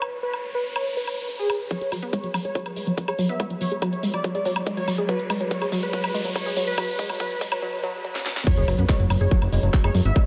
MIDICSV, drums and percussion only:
0, 0, Header, 1, 2, 480
1, 0, Start_track
1, 0, Tempo, 422535
1, 20, Time_signature, 4, 2, 24, 8
1, 11659, End_track
2, 0, Start_track
2, 0, Title_t, "Drums"
2, 21, Note_on_c, 9, 76, 77
2, 134, Note_off_c, 9, 76, 0
2, 381, Note_on_c, 9, 76, 40
2, 494, Note_off_c, 9, 76, 0
2, 861, Note_on_c, 9, 76, 76
2, 974, Note_off_c, 9, 76, 0
2, 1221, Note_on_c, 9, 76, 41
2, 1334, Note_off_c, 9, 76, 0
2, 1700, Note_on_c, 9, 76, 84
2, 1814, Note_off_c, 9, 76, 0
2, 1940, Note_on_c, 9, 36, 113
2, 1940, Note_on_c, 9, 42, 66
2, 1947, Note_on_c, 9, 69, 46
2, 2054, Note_off_c, 9, 36, 0
2, 2054, Note_off_c, 9, 42, 0
2, 2061, Note_off_c, 9, 69, 0
2, 2061, Note_on_c, 9, 42, 44
2, 2174, Note_off_c, 9, 42, 0
2, 2181, Note_on_c, 9, 46, 108
2, 2181, Note_on_c, 9, 69, 83
2, 2181, Note_on_c, 9, 76, 37
2, 2294, Note_off_c, 9, 46, 0
2, 2294, Note_off_c, 9, 69, 0
2, 2294, Note_off_c, 9, 76, 0
2, 2296, Note_on_c, 9, 69, 37
2, 2300, Note_on_c, 9, 42, 40
2, 2409, Note_off_c, 9, 69, 0
2, 2414, Note_off_c, 9, 42, 0
2, 2417, Note_on_c, 9, 69, 55
2, 2420, Note_on_c, 9, 36, 124
2, 2420, Note_on_c, 9, 42, 68
2, 2530, Note_off_c, 9, 69, 0
2, 2533, Note_on_c, 9, 69, 33
2, 2534, Note_off_c, 9, 36, 0
2, 2534, Note_off_c, 9, 42, 0
2, 2540, Note_on_c, 9, 42, 43
2, 2647, Note_off_c, 9, 69, 0
2, 2654, Note_off_c, 9, 42, 0
2, 2659, Note_on_c, 9, 69, 93
2, 2661, Note_on_c, 9, 46, 103
2, 2661, Note_on_c, 9, 76, 76
2, 2773, Note_off_c, 9, 69, 0
2, 2774, Note_off_c, 9, 46, 0
2, 2774, Note_off_c, 9, 76, 0
2, 2781, Note_on_c, 9, 42, 39
2, 2785, Note_on_c, 9, 69, 45
2, 2894, Note_off_c, 9, 42, 0
2, 2896, Note_off_c, 9, 69, 0
2, 2896, Note_on_c, 9, 69, 52
2, 2900, Note_on_c, 9, 36, 110
2, 2900, Note_on_c, 9, 42, 62
2, 3009, Note_off_c, 9, 69, 0
2, 3014, Note_off_c, 9, 36, 0
2, 3014, Note_off_c, 9, 42, 0
2, 3020, Note_on_c, 9, 42, 41
2, 3020, Note_on_c, 9, 76, 36
2, 3134, Note_off_c, 9, 42, 0
2, 3134, Note_off_c, 9, 76, 0
2, 3140, Note_on_c, 9, 46, 107
2, 3140, Note_on_c, 9, 69, 99
2, 3254, Note_off_c, 9, 46, 0
2, 3254, Note_off_c, 9, 69, 0
2, 3256, Note_on_c, 9, 69, 44
2, 3260, Note_on_c, 9, 42, 41
2, 3370, Note_off_c, 9, 69, 0
2, 3374, Note_off_c, 9, 42, 0
2, 3380, Note_on_c, 9, 36, 120
2, 3380, Note_on_c, 9, 42, 67
2, 3382, Note_on_c, 9, 69, 50
2, 3494, Note_off_c, 9, 36, 0
2, 3494, Note_off_c, 9, 42, 0
2, 3495, Note_off_c, 9, 69, 0
2, 3500, Note_on_c, 9, 42, 42
2, 3500, Note_on_c, 9, 76, 74
2, 3502, Note_on_c, 9, 69, 34
2, 3614, Note_off_c, 9, 42, 0
2, 3614, Note_off_c, 9, 76, 0
2, 3615, Note_off_c, 9, 69, 0
2, 3615, Note_on_c, 9, 69, 85
2, 3620, Note_on_c, 9, 46, 106
2, 3728, Note_off_c, 9, 69, 0
2, 3734, Note_off_c, 9, 46, 0
2, 3738, Note_on_c, 9, 69, 39
2, 3740, Note_on_c, 9, 42, 44
2, 3851, Note_off_c, 9, 69, 0
2, 3854, Note_off_c, 9, 42, 0
2, 3858, Note_on_c, 9, 69, 53
2, 3860, Note_on_c, 9, 36, 121
2, 3860, Note_on_c, 9, 42, 66
2, 3860, Note_on_c, 9, 76, 37
2, 3972, Note_off_c, 9, 69, 0
2, 3974, Note_off_c, 9, 36, 0
2, 3974, Note_off_c, 9, 42, 0
2, 3974, Note_off_c, 9, 76, 0
2, 3980, Note_on_c, 9, 42, 41
2, 4093, Note_off_c, 9, 42, 0
2, 4098, Note_on_c, 9, 69, 93
2, 4100, Note_on_c, 9, 46, 110
2, 4212, Note_off_c, 9, 69, 0
2, 4213, Note_off_c, 9, 46, 0
2, 4220, Note_on_c, 9, 42, 41
2, 4223, Note_on_c, 9, 69, 39
2, 4334, Note_off_c, 9, 42, 0
2, 4337, Note_off_c, 9, 69, 0
2, 4340, Note_on_c, 9, 36, 127
2, 4340, Note_on_c, 9, 42, 67
2, 4340, Note_on_c, 9, 76, 72
2, 4344, Note_on_c, 9, 69, 55
2, 4454, Note_off_c, 9, 36, 0
2, 4454, Note_off_c, 9, 42, 0
2, 4454, Note_off_c, 9, 76, 0
2, 4458, Note_off_c, 9, 69, 0
2, 4460, Note_on_c, 9, 42, 41
2, 4460, Note_on_c, 9, 69, 34
2, 4573, Note_off_c, 9, 42, 0
2, 4573, Note_off_c, 9, 69, 0
2, 4578, Note_on_c, 9, 69, 98
2, 4580, Note_on_c, 9, 46, 113
2, 4692, Note_off_c, 9, 69, 0
2, 4693, Note_off_c, 9, 46, 0
2, 4699, Note_on_c, 9, 69, 45
2, 4700, Note_on_c, 9, 42, 39
2, 4700, Note_on_c, 9, 76, 34
2, 4812, Note_off_c, 9, 69, 0
2, 4813, Note_off_c, 9, 42, 0
2, 4813, Note_off_c, 9, 76, 0
2, 4819, Note_on_c, 9, 69, 52
2, 4820, Note_on_c, 9, 36, 114
2, 4820, Note_on_c, 9, 42, 65
2, 4933, Note_off_c, 9, 42, 0
2, 4933, Note_off_c, 9, 69, 0
2, 4934, Note_off_c, 9, 36, 0
2, 4940, Note_on_c, 9, 42, 40
2, 5053, Note_off_c, 9, 42, 0
2, 5060, Note_on_c, 9, 46, 114
2, 5065, Note_on_c, 9, 69, 88
2, 5173, Note_off_c, 9, 46, 0
2, 5179, Note_off_c, 9, 69, 0
2, 5180, Note_on_c, 9, 42, 39
2, 5180, Note_on_c, 9, 76, 70
2, 5186, Note_on_c, 9, 69, 39
2, 5294, Note_off_c, 9, 42, 0
2, 5294, Note_off_c, 9, 76, 0
2, 5300, Note_off_c, 9, 69, 0
2, 5300, Note_on_c, 9, 36, 126
2, 5300, Note_on_c, 9, 42, 64
2, 5304, Note_on_c, 9, 69, 62
2, 5413, Note_off_c, 9, 42, 0
2, 5414, Note_off_c, 9, 36, 0
2, 5417, Note_off_c, 9, 69, 0
2, 5417, Note_on_c, 9, 69, 40
2, 5420, Note_on_c, 9, 42, 41
2, 5531, Note_off_c, 9, 69, 0
2, 5534, Note_off_c, 9, 42, 0
2, 5540, Note_on_c, 9, 46, 110
2, 5540, Note_on_c, 9, 76, 39
2, 5542, Note_on_c, 9, 69, 89
2, 5654, Note_off_c, 9, 46, 0
2, 5654, Note_off_c, 9, 76, 0
2, 5655, Note_off_c, 9, 69, 0
2, 5660, Note_on_c, 9, 42, 43
2, 5661, Note_on_c, 9, 69, 41
2, 5773, Note_off_c, 9, 42, 0
2, 5775, Note_off_c, 9, 69, 0
2, 5780, Note_on_c, 9, 36, 109
2, 5780, Note_on_c, 9, 42, 65
2, 5787, Note_on_c, 9, 69, 52
2, 5893, Note_off_c, 9, 36, 0
2, 5894, Note_off_c, 9, 42, 0
2, 5900, Note_off_c, 9, 69, 0
2, 5900, Note_on_c, 9, 42, 41
2, 6014, Note_off_c, 9, 42, 0
2, 6015, Note_on_c, 9, 69, 98
2, 6020, Note_on_c, 9, 46, 114
2, 6020, Note_on_c, 9, 76, 76
2, 6128, Note_off_c, 9, 69, 0
2, 6134, Note_off_c, 9, 46, 0
2, 6134, Note_off_c, 9, 76, 0
2, 6140, Note_on_c, 9, 42, 41
2, 6144, Note_on_c, 9, 69, 40
2, 6254, Note_off_c, 9, 42, 0
2, 6257, Note_off_c, 9, 69, 0
2, 6260, Note_on_c, 9, 36, 108
2, 6260, Note_on_c, 9, 42, 65
2, 6267, Note_on_c, 9, 69, 54
2, 6374, Note_off_c, 9, 36, 0
2, 6374, Note_off_c, 9, 42, 0
2, 6380, Note_off_c, 9, 69, 0
2, 6380, Note_on_c, 9, 42, 41
2, 6380, Note_on_c, 9, 76, 41
2, 6381, Note_on_c, 9, 69, 42
2, 6494, Note_off_c, 9, 42, 0
2, 6494, Note_off_c, 9, 76, 0
2, 6495, Note_off_c, 9, 69, 0
2, 6500, Note_on_c, 9, 46, 110
2, 6505, Note_on_c, 9, 69, 105
2, 6614, Note_off_c, 9, 46, 0
2, 6618, Note_off_c, 9, 69, 0
2, 6620, Note_on_c, 9, 42, 38
2, 6620, Note_on_c, 9, 69, 42
2, 6734, Note_off_c, 9, 42, 0
2, 6734, Note_off_c, 9, 69, 0
2, 6739, Note_on_c, 9, 69, 63
2, 6740, Note_on_c, 9, 36, 97
2, 6740, Note_on_c, 9, 42, 60
2, 6853, Note_off_c, 9, 36, 0
2, 6853, Note_off_c, 9, 69, 0
2, 6854, Note_off_c, 9, 42, 0
2, 6860, Note_on_c, 9, 42, 38
2, 6860, Note_on_c, 9, 76, 76
2, 6970, Note_on_c, 9, 69, 97
2, 6974, Note_off_c, 9, 42, 0
2, 6974, Note_off_c, 9, 76, 0
2, 6980, Note_on_c, 9, 46, 115
2, 7083, Note_off_c, 9, 69, 0
2, 7094, Note_off_c, 9, 46, 0
2, 7100, Note_on_c, 9, 42, 38
2, 7103, Note_on_c, 9, 69, 41
2, 7214, Note_off_c, 9, 42, 0
2, 7216, Note_off_c, 9, 69, 0
2, 7220, Note_on_c, 9, 36, 107
2, 7220, Note_on_c, 9, 42, 63
2, 7220, Note_on_c, 9, 69, 55
2, 7220, Note_on_c, 9, 76, 38
2, 7333, Note_off_c, 9, 36, 0
2, 7333, Note_off_c, 9, 69, 0
2, 7334, Note_off_c, 9, 42, 0
2, 7334, Note_off_c, 9, 76, 0
2, 7336, Note_on_c, 9, 69, 38
2, 7340, Note_on_c, 9, 42, 42
2, 7450, Note_off_c, 9, 69, 0
2, 7454, Note_off_c, 9, 42, 0
2, 7458, Note_on_c, 9, 69, 85
2, 7460, Note_on_c, 9, 46, 115
2, 7571, Note_off_c, 9, 69, 0
2, 7574, Note_off_c, 9, 46, 0
2, 7579, Note_on_c, 9, 69, 43
2, 7581, Note_on_c, 9, 42, 39
2, 7692, Note_off_c, 9, 69, 0
2, 7694, Note_off_c, 9, 42, 0
2, 7700, Note_on_c, 9, 36, 106
2, 7700, Note_on_c, 9, 42, 65
2, 7700, Note_on_c, 9, 76, 84
2, 7705, Note_on_c, 9, 69, 49
2, 7814, Note_off_c, 9, 36, 0
2, 7814, Note_off_c, 9, 42, 0
2, 7814, Note_off_c, 9, 76, 0
2, 7819, Note_off_c, 9, 69, 0
2, 7820, Note_on_c, 9, 42, 39
2, 7934, Note_off_c, 9, 42, 0
2, 7940, Note_on_c, 9, 36, 110
2, 7940, Note_on_c, 9, 46, 110
2, 7941, Note_on_c, 9, 69, 93
2, 8053, Note_off_c, 9, 36, 0
2, 8054, Note_off_c, 9, 46, 0
2, 8054, Note_off_c, 9, 69, 0
2, 8060, Note_on_c, 9, 42, 39
2, 8060, Note_on_c, 9, 76, 40
2, 8064, Note_on_c, 9, 69, 38
2, 8174, Note_off_c, 9, 42, 0
2, 8174, Note_off_c, 9, 76, 0
2, 8178, Note_off_c, 9, 69, 0
2, 8180, Note_on_c, 9, 36, 105
2, 8180, Note_on_c, 9, 42, 63
2, 8182, Note_on_c, 9, 69, 51
2, 8293, Note_off_c, 9, 36, 0
2, 8294, Note_off_c, 9, 42, 0
2, 8296, Note_off_c, 9, 69, 0
2, 8297, Note_on_c, 9, 69, 41
2, 8300, Note_on_c, 9, 42, 37
2, 8410, Note_off_c, 9, 69, 0
2, 8414, Note_off_c, 9, 42, 0
2, 8419, Note_on_c, 9, 69, 95
2, 8420, Note_on_c, 9, 36, 106
2, 8420, Note_on_c, 9, 46, 115
2, 8533, Note_off_c, 9, 36, 0
2, 8533, Note_off_c, 9, 69, 0
2, 8534, Note_off_c, 9, 46, 0
2, 8540, Note_on_c, 9, 42, 36
2, 8540, Note_on_c, 9, 76, 79
2, 8542, Note_on_c, 9, 69, 43
2, 8654, Note_off_c, 9, 42, 0
2, 8654, Note_off_c, 9, 76, 0
2, 8656, Note_off_c, 9, 69, 0
2, 9260, Note_on_c, 9, 38, 55
2, 9374, Note_off_c, 9, 38, 0
2, 9380, Note_on_c, 9, 38, 82
2, 9494, Note_off_c, 9, 38, 0
2, 9500, Note_on_c, 9, 38, 85
2, 9614, Note_off_c, 9, 38, 0
2, 9616, Note_on_c, 9, 69, 39
2, 9620, Note_on_c, 9, 36, 117
2, 9620, Note_on_c, 9, 42, 69
2, 9620, Note_on_c, 9, 49, 104
2, 9730, Note_off_c, 9, 69, 0
2, 9733, Note_off_c, 9, 42, 0
2, 9733, Note_off_c, 9, 49, 0
2, 9734, Note_off_c, 9, 36, 0
2, 9740, Note_on_c, 9, 42, 44
2, 9854, Note_off_c, 9, 42, 0
2, 9860, Note_on_c, 9, 46, 105
2, 9860, Note_on_c, 9, 76, 38
2, 9864, Note_on_c, 9, 69, 87
2, 9974, Note_off_c, 9, 46, 0
2, 9974, Note_off_c, 9, 76, 0
2, 9977, Note_off_c, 9, 69, 0
2, 9977, Note_on_c, 9, 69, 48
2, 9980, Note_on_c, 9, 42, 41
2, 10091, Note_off_c, 9, 69, 0
2, 10094, Note_off_c, 9, 42, 0
2, 10100, Note_on_c, 9, 36, 123
2, 10100, Note_on_c, 9, 39, 125
2, 10100, Note_on_c, 9, 42, 73
2, 10103, Note_on_c, 9, 69, 39
2, 10214, Note_off_c, 9, 36, 0
2, 10214, Note_off_c, 9, 39, 0
2, 10214, Note_off_c, 9, 42, 0
2, 10216, Note_off_c, 9, 69, 0
2, 10220, Note_on_c, 9, 42, 42
2, 10334, Note_off_c, 9, 42, 0
2, 10338, Note_on_c, 9, 69, 85
2, 10340, Note_on_c, 9, 46, 105
2, 10340, Note_on_c, 9, 76, 76
2, 10452, Note_off_c, 9, 69, 0
2, 10454, Note_off_c, 9, 46, 0
2, 10454, Note_off_c, 9, 76, 0
2, 10460, Note_on_c, 9, 42, 40
2, 10462, Note_on_c, 9, 69, 54
2, 10574, Note_off_c, 9, 42, 0
2, 10575, Note_off_c, 9, 69, 0
2, 10580, Note_on_c, 9, 36, 121
2, 10581, Note_on_c, 9, 42, 68
2, 10581, Note_on_c, 9, 69, 38
2, 10694, Note_off_c, 9, 36, 0
2, 10694, Note_off_c, 9, 42, 0
2, 10695, Note_off_c, 9, 69, 0
2, 10701, Note_on_c, 9, 42, 43
2, 10701, Note_on_c, 9, 76, 39
2, 10814, Note_off_c, 9, 42, 0
2, 10814, Note_off_c, 9, 76, 0
2, 10820, Note_on_c, 9, 46, 107
2, 10822, Note_on_c, 9, 69, 101
2, 10933, Note_off_c, 9, 69, 0
2, 10933, Note_on_c, 9, 69, 59
2, 10934, Note_off_c, 9, 46, 0
2, 10940, Note_on_c, 9, 42, 39
2, 11046, Note_off_c, 9, 69, 0
2, 11054, Note_off_c, 9, 42, 0
2, 11060, Note_on_c, 9, 36, 119
2, 11060, Note_on_c, 9, 39, 113
2, 11060, Note_on_c, 9, 42, 68
2, 11062, Note_on_c, 9, 69, 39
2, 11174, Note_off_c, 9, 36, 0
2, 11174, Note_off_c, 9, 39, 0
2, 11174, Note_off_c, 9, 42, 0
2, 11176, Note_off_c, 9, 69, 0
2, 11181, Note_on_c, 9, 42, 44
2, 11181, Note_on_c, 9, 76, 79
2, 11294, Note_off_c, 9, 42, 0
2, 11294, Note_off_c, 9, 76, 0
2, 11298, Note_on_c, 9, 69, 96
2, 11300, Note_on_c, 9, 46, 109
2, 11411, Note_off_c, 9, 69, 0
2, 11414, Note_off_c, 9, 46, 0
2, 11420, Note_on_c, 9, 42, 42
2, 11424, Note_on_c, 9, 69, 53
2, 11534, Note_off_c, 9, 42, 0
2, 11537, Note_off_c, 9, 69, 0
2, 11540, Note_on_c, 9, 36, 127
2, 11540, Note_on_c, 9, 42, 67
2, 11540, Note_on_c, 9, 69, 39
2, 11540, Note_on_c, 9, 76, 38
2, 11654, Note_off_c, 9, 36, 0
2, 11654, Note_off_c, 9, 42, 0
2, 11654, Note_off_c, 9, 69, 0
2, 11654, Note_off_c, 9, 76, 0
2, 11659, End_track
0, 0, End_of_file